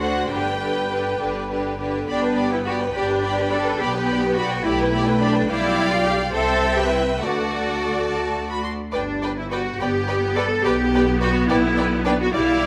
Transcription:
0.00 0.20 D2 soft
0.00 0.29 D3 soft
0.00 0.29 D4 soft
0.00 0.29 F#4 medium
0.00 0.30 F#4 soft
0.00 0.30 C5 soft
0.00 0.31 F#5 medium
0.30 1.09 G1 soft
0.30 0.59 D3 soft
0.30 0.59 D4 soft
0.30 0.59 G4 soft
0.30 0.58 B4 soft
0.30 1.64 B4 soft
0.30 1.18 G5 medium
0.60 0.88 D3 soft
0.60 0.88 D4 soft
0.60 0.88 G4 soft
0.60 0.88 B4 soft
0.89 1.18 D3 soft
0.89 1.18 D4 soft
0.89 1.18 G4 soft
0.89 1.18 B4 soft
1.19 1.98 G1 soft
1.19 1.48 D3 soft
1.19 1.48 D4 soft
1.19 1.49 G4 soft
1.19 1.49 B4 soft
1.49 1.77 D3 soft
1.49 1.77 D4 soft
1.49 1.78 G4 soft
1.49 1.78 B4 soft
1.78 2.07 D3 soft
1.78 2.07 D4 soft
1.78 2.07 G4 soft
1.78 2.08 B4 soft
2.08 2.85 G1 medium
2.08 2.90 B3 medium
2.08 2.49 D4 medium
2.08 2.22 G4 soft
2.08 2.22 D5 soft
2.08 2.21 B5 soft
2.21 2.38 B4 soft
2.21 2.37 G5 soft
2.35 2.51 G4 soft
2.35 2.52 D5 soft
2.35 2.51 B5 soft
2.49 2.57 E4 medium
2.49 2.66 B4 soft
2.49 2.65 G5 soft
2.64 2.74 F#4 medium
2.64 2.80 G4 soft
2.64 2.80 D5 soft
2.64 2.78 B5 soft
2.80 2.95 B4 soft
2.80 2.94 G5 soft
2.94 3.70 G1 medium
2.94 3.79 D4 medium
2.94 3.51 G4 medium
2.94 3.10 G4 soft
2.94 3.09 D5 soft
2.94 3.09 B5 soft
3.08 3.24 B4 soft
3.08 3.23 G5 soft
3.22 3.37 G4 soft
3.22 3.37 D5 soft
3.22 3.36 B5 soft
3.35 3.53 B4 soft
3.35 3.51 G5 soft
3.50 3.66 G4 soft
3.50 3.80 A4 medium
3.50 3.66 D5 soft
3.50 3.65 B5 soft
3.65 3.80 B4 soft
3.65 3.80 G5 soft
3.79 4.55 B1 medium
3.79 4.65 B3 medium
3.79 4.37 G4 medium
3.79 3.94 G4 soft
3.79 3.94 D5 soft
3.79 3.93 B5 soft
3.92 4.09 B4 soft
3.92 4.08 G5 soft
4.07 4.23 G4 soft
4.07 4.23 D5 soft
4.07 4.22 B5 soft
4.21 4.37 B4 soft
4.21 4.36 G5 soft
4.35 4.65 F#4 medium
4.35 4.50 G4 soft
4.35 4.50 D5 soft
4.35 4.49 B5 soft
4.51 4.66 B4 soft
4.51 4.65 G5 soft
4.64 5.39 B1 medium
4.64 5.48 A3 medium
4.64 5.21 E4 medium
4.64 4.79 G4 soft
4.64 4.79 D5 medium
4.64 4.79 B5 medium
4.80 4.94 B4 soft
4.80 4.93 G5 medium
4.92 5.07 G4 soft
4.92 5.07 D5 soft
4.92 5.05 B5 soft
5.06 5.22 B4 soft
5.06 5.20 G5 soft
5.20 5.48 D4 medium
5.20 5.35 G4 medium
5.20 5.36 D5 medium
5.20 5.35 B5 soft
5.34 5.49 B4 medium
5.34 5.48 G5 medium
5.49 6.30 B1 medium
5.49 6.34 G3 medium
5.49 5.90 E4 medium
5.49 6.30 D5 medium
5.49 6.30 F5 medium
5.49 6.30 G5 medium
5.92 6.06 F4 medium
6.05 6.13 G4 medium
6.33 7.18 C2 medium
6.33 7.18 C4 medium
6.33 6.75 A4 medium
6.33 6.76 C5 medium
6.33 7.18 E5 medium
6.33 7.18 G5 medium
6.77 6.91 G4 medium
6.77 7.19 B4 medium
6.91 6.99 E4 medium
7.20 8.74 D2 medium
7.20 8.48 A3 medium
7.20 8.62 F#4 medium
7.20 8.74 A4 soft
7.20 8.74 D5 medium
7.20 8.01 F#5 medium
8.07 8.47 A5 soft
8.51 8.65 B5 soft
8.64 8.72 C6 soft
8.92 9.70 G1 medium
8.92 9.34 D4 medium
8.92 9.01 B4 soft
8.92 9.00 D5 soft
8.92 9.02 G5 soft
9.22 9.31 B4 soft
9.22 9.30 D5 soft
9.22 9.31 G5 soft
9.38 9.51 E4 medium
9.51 9.79 F#4 medium
9.51 9.59 B4 soft
9.51 9.60 D5 soft
9.51 9.60 G5 soft
9.79 10.55 G1 medium
9.79 10.61 B3 medium
9.79 10.36 G4 medium
9.79 9.88 B4 soft
9.79 9.89 D5 soft
9.79 9.89 G5 soft
10.08 10.16 B4 soft
10.08 10.16 D5 soft
10.08 10.17 G5 soft
10.36 10.65 A4 medium
10.36 10.44 B4 medium
10.36 10.45 D5 medium
10.36 10.45 G5 soft
10.65 11.39 B1 medium
10.65 12.31 B3 medium
10.65 11.21 G4 medium
10.65 10.73 B4 medium
10.65 10.73 D5 medium
10.65 10.73 G5 medium
10.94 11.02 B4 medium
10.94 11.02 D5 medium
10.94 11.03 G5 medium
11.20 11.48 F#4 medium
11.20 11.29 B4 soft
11.20 11.29 D5 medium
11.20 11.30 G5 medium
11.49 12.24 B1 medium
11.49 12.04 E4 medium
11.49 11.58 B4 medium
11.49 11.58 D5 medium
11.49 11.57 G5 medium
11.77 11.86 B4 medium
11.77 11.85 D5 medium
11.77 11.85 G5 medium
12.05 12.11 D4 medium
12.05 12.13 B4 medium
12.05 12.13 D5 medium
12.05 12.14 G5 medium
12.21 12.34 F#4 medium
12.33 12.66 B1 medium
12.33 12.66 G3 medium
12.33 12.66 E4 medium
12.33 12.66 D5 medium
12.33 12.66 F5 medium

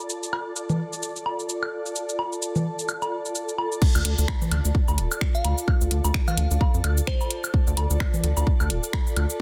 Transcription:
0.00 9.41 F4 medium
0.00 9.41 A4 medium
0.00 3.83 D5 medium
0.00 9.41 D5 medium
0.00 9.41 A5 medium
0.10 cabasa medium
0.23 cabasa soft
0.33 high woodblock medium
0.33 low woodblock soft
0.56 cabasa medium
0.70 low conga medium
0.70 cabasa soft
0.93 cabasa soft
1.03 cabasa medium
1.16 cabasa soft
1.26 low woodblock soft
1.39 cabasa soft
1.49 cabasa medium
1.63 high woodblock medium
1.86 cabasa soft
1.96 cabasa medium
2.09 cabasa soft
2.19 low woodblock soft
2.32 cabasa soft
2.42 cabasa medium
2.56 low conga medium
2.56 cabasa soft
2.79 cabasa soft
2.89 cabasa medium
2.89 high woodblock medium
3.02 cabasa soft
3.02 low woodblock medium
3.25 cabasa soft
3.35 cabasa medium
3.49 cabasa soft
3.58 low woodblock medium
3.72 cabasa soft
3.82 kick loud
3.82 crash loud
3.95 4.02 D2 loud
3.95 cabasa soft
3.95 high woodblock medium
4.05 4.14 D2 medium
4.05 closed hi-hat medium
4.18 4.25 D2 medium
4.18 cabasa medium
4.28 finger snap medium
4.28 kick loud
4.28 low woodblock soft
4.42 low conga medium
4.42 cabasa soft
4.51 4.61 D2 medium
4.51 closed hi-hat medium
4.51 high woodblock medium
4.65 4.72 D2 medium
4.65 cabasa medium
4.75 kick loud
4.88 5.00 D2 loud
4.88 cabasa soft
4.88 low woodblock soft
4.98 5.07 D1 loud
4.98 closed hi-hat medium
5.11 cabasa medium
5.11 high woodblock medium
5.21 finger snap loud
5.21 kick loud
5.35 5.99 F5 medium
5.35 cabasa soft
5.45 5.54 D2 medium
5.45 closed hi-hat medium
5.45 low woodblock soft
5.58 cabasa medium
5.68 kick loud
5.68 high woodblock medium
5.81 5.88 D2 loud
5.81 cabasa soft
5.91 6.00 D2 loud
5.91 closed hi-hat loud
6.04 6.11 D2 medium
6.04 cabasa medium
6.04 low woodblock soft
6.14 finger snap loud
6.14 kick loud
6.28 6.92 F5 loud
6.28 low conga medium
6.28 cabasa soft
6.28 high woodblock medium
6.37 6.47 D2 medium
6.37 closed hi-hat medium
6.51 6.58 D2 medium
6.51 cabasa soft
6.61 kick loud
6.61 low woodblock soft
6.74 6.81 F2 medium
6.74 cabasa soft
6.84 7.01 D2 loud
6.84 closed hi-hat medium
6.84 high woodblock medium
6.97 cabasa medium
7.07 7.54 C5 loud
7.07 finger snap loud
7.07 kick loud
7.21 cabasa soft
7.21 low woodblock soft
7.31 closed hi-hat medium
7.44 cabasa medium
7.44 high woodblock medium
7.54 kick loud
7.67 7.74 D2 loud
7.67 cabasa soft
7.77 7.86 D2 medium
7.77 closed hi-hat loud
7.77 low woodblock soft
7.90 7.97 D2 medium
7.90 cabasa medium
8.00 finger snap medium
8.00 kick loud
8.00 high woodblock medium
8.14 low conga medium
8.14 cabasa soft
8.24 8.33 D2 medium
8.24 closed hi-hat loud
8.37 8.44 D2 medium
8.37 cabasa soft
8.37 low woodblock soft
8.47 kick loud
8.60 8.72 D2 loud
8.60 cabasa soft
8.60 high woodblock medium
8.70 8.79 D1 medium
8.70 closed hi-hat loud
8.83 cabasa medium
8.93 finger snap medium
8.93 kick loud
8.93 low woodblock soft
9.07 cabasa soft
9.16 9.26 D2 medium
9.16 closed hi-hat medium
9.16 high woodblock medium
9.30 cabasa medium

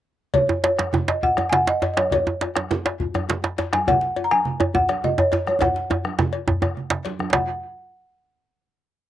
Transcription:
0.34 0.62 C#5 medium
0.34 bombo low medium
0.34 cowbell medium
0.34 low conga medium
0.34 djembe bass medium
0.49 djembe slap soft
0.49 djembe tone medium
0.64 0.91 C#5 medium
0.64 cowbell soft
0.64 djembe slap medium
0.64 high conga soft
0.64 djembe tone medium
0.79 bombo rim medium
0.79 djembe slap medium
0.79 djembe slap soft
0.79 high conga medium
0.93 djembe slap medium
0.93 high conga soft
0.93 djembe tone medium
0.93 low conga medium
1.08 1.22 D#5 medium
1.08 cowbell soft
1.08 djembe slap medium
1.08 djembe tone soft
1.23 1.47 F#5 medium
1.23 bombo low medium
1.23 high conga soft
1.23 djembe bass medium
1.37 bombo rim medium
1.37 cowbell soft
1.37 djembe slap soft
1.37 high conga medium
1.37 djembe tone medium
1.49 1.68 F#5 medium
1.49 1.53 G#5 medium
1.49 djembe slap medium
1.49 djembe tone medium
1.49 low conga medium
1.67 1.92 D#5 medium
1.67 djembe slap medium
1.82 bombo rim soft
1.82 cowbell medium
1.82 djembe slap medium
1.82 djembe tone medium
1.94 2.11 C#5 medium
1.94 1.97 D#5 medium
1.94 bombo rim medium
1.94 djembe slap medium
1.94 high conga soft
1.94 djembe tone soft
2.11 2.67 C#5 medium
2.11 bombo low medium
2.11 cowbell medium
2.11 low conga medium
2.11 djembe bass medium
2.27 djembe tone medium
2.41 cowbell soft
2.41 djembe slap medium
2.41 djembe tone medium
2.41 high conga soft
2.56 bombo rim medium
2.56 djembe slap soft
2.56 djembe slap medium
2.56 high conga soft
2.71 djembe slap medium
2.71 djembe tone medium
2.71 high conga soft
2.71 low conga medium
2.85 cowbell soft
2.85 djembe slap medium
2.85 djembe tone medium
3.00 bombo low medium
3.00 high conga soft
3.00 djembe bass medium
3.14 bombo rim medium
3.14 cowbell soft
3.14 djembe slap soft
3.14 high conga soft
3.14 djembe tone medium
3.29 djembe slap medium
3.29 djembe tone medium
3.29 low conga medium
3.44 djembe slap medium
3.58 bombo rim soft
3.58 cowbell soft
3.58 djembe slap medium
3.58 djembe tone medium
3.73 3.88 G#5 medium
3.73 bombo rim medium
3.73 djembe slap medium
3.73 djembe tone medium
3.73 high conga medium
3.87 4.15 F#5 medium
3.87 bombo low loud
3.87 cowbell medium
3.87 djembe bass medium
3.87 low conga medium
4.01 djembe slap medium
4.16 cowbell soft
4.16 djembe tone medium
4.16 high conga soft
4.24 4.31 A#5 medium
4.31 4.76 G#5 loud
4.31 bombo rim medium
4.31 djembe slap soft
4.31 high conga soft
4.45 high conga soft
4.45 low conga medium
4.60 cowbell soft
4.60 djembe tone medium
4.60 djembe tone loud
4.74 5.05 F#5 medium
4.74 bombo low medium
4.74 djembe tone medium
4.74 high conga soft
4.74 djembe bass medium
4.89 bombo rim medium
4.89 cowbell soft
4.89 djembe slap medium
4.89 high conga soft
5.04 5.19 D#5 medium
5.04 djembe tone medium
5.04 low conga medium
5.18 5.47 C#5 medium
5.18 djembe tone medium
5.32 bombo rim soft
5.32 cowbell soft
5.32 djembe slap medium
5.32 djembe tone medium
5.47 5.63 C#5 medium
5.47 bombo rim medium
5.47 djembe tone medium
5.47 high conga medium
5.61 6.15 F#5 medium
5.61 bombo low loud
5.61 cowbell medium
5.61 djembe tone medium
5.61 high conga soft
5.61 djembe bass medium
5.61 low conga medium
5.76 djembe slap medium
5.76 high conga soft
5.90 cowbell soft
5.90 djembe slap soft
5.90 djembe tone medium
6.05 bombo rim medium
6.05 high conga medium
6.19 bombo rim soft
6.19 djembe slap medium
6.19 djembe tone loud
6.19 low conga medium
6.33 cowbell soft
6.33 djembe tone medium
6.48 bombo low medium
6.48 djembe slap soft
6.48 djembe tone loud
6.48 djembe bass medium
6.62 bombo rim medium
6.62 cowbell soft
6.62 djembe slap soft
6.62 djembe tone medium
6.62 low conga soft
6.77 low conga soft
6.90 djembe slap loud
6.90 low conga soft
7.05 cowbell soft
7.05 djembe slap medium
7.05 high conga medium
7.19 bombo rim medium
7.19 high conga medium
7.19 djembe tone medium
7.33 7.46 F#5 medium
7.33 bombo low medium
7.33 cowbell medium
7.33 djembe slap medium
7.33 low conga medium
7.33 djembe bass medium

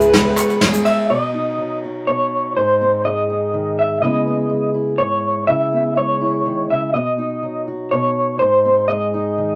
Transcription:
0.00 0.40 C#2 loud
0.00 1.11 C#2 medium
0.00 0.12 C#3 medium
0.00 1.12 C#3 medium
0.00 0.11 G#3 medium
0.00 1.06 G#3 medium
0.00 0.12 B3 medium
0.00 1.06 C#4 medium
0.00 0.13 E4 medium
0.00 1.06 E4 medium
0.00 0.13 G#4 medium
0.00 0.58 B4 medium
0.00 1.07 B4 medium
0.00 1.07 C#5 medium
0.00 0.62 E5 medium
0.00 0.85 B5 medium
0.00 0.36 E6 medium
0.00 shaker medium
0.12 0.59 G#3 medium
0.12 0.60 B3 medium
0.12 0.61 E4 medium
0.12 0.61 G#4 medium
0.12 snare medium
0.12 ride medium
0.36 1.09 C#6 medium
0.36 clap loud
0.36 shaker medium
0.50 clap soft
0.50 shaker soft
0.60 1.09 G#3 medium
0.60 1.10 B3 medium
0.60 1.10 E4 medium
0.60 1.11 G#4 medium
0.60 snare medium
0.60 ride medium
0.74 clap soft
0.74 shaker medium
0.85 1.10 E5 medium
0.85 1.10 E6 medium
0.85 ride medium
1.10 2.06 B2 soft
1.10 1.83 F#4 soft
1.10 1.79 D#5 medium
1.34 2.53 D#4 soft
1.58 2.55 F#3 soft
1.84 2.53 F#4 soft
2.07 2.53 B2 soft
2.07 2.56 C#5 medium
2.56 4.02 G#2 soft
2.56 3.28 D#4 soft
2.56 3.05 C5 medium
2.81 3.99 C4 soft
3.04 4.02 G#3 soft
3.04 3.74 D#5 medium
3.30 4.02 D#4 soft
3.53 3.99 D#3 soft
3.79 4.01 E5 medium
4.02 4.99 C#3 soft
4.02 4.49 G#3 soft
4.02 4.27 B3 soft
4.02 4.74 E4 soft
4.02 5.50 B4 soft
4.02 4.71 D#5 medium
4.27 5.72 B3 soft
4.49 5.95 G#3 soft
4.74 5.45 E4 soft
4.98 5.47 G#2 soft
4.98 5.47 C#5 medium
5.47 6.45 C#3 soft
5.47 6.20 E4 soft
5.47 5.93 E5 medium
5.72 7.18 B3 soft
5.96 6.97 G#3 soft
5.96 6.70 C#5 medium
6.21 6.91 E4 soft
6.46 6.70 D#3 soft
6.70 6.94 C#3 soft
6.70 6.93 E5 medium
6.94 7.91 B2 soft
6.94 7.66 F#4 soft
6.94 7.63 D#5 medium
7.18 8.37 D#4 soft
7.42 8.40 F#3 soft
7.68 8.37 F#4 soft
7.91 8.37 B2 soft
7.91 8.36 C#5 medium
8.39 9.55 G#2 soft
8.39 9.13 D#4 soft
8.39 8.85 C5 medium
8.65 9.55 C4 soft
8.88 9.55 G#3 soft
8.88 9.55 D#5 medium
9.14 9.55 D#4 soft
9.38 9.55 D#3 soft

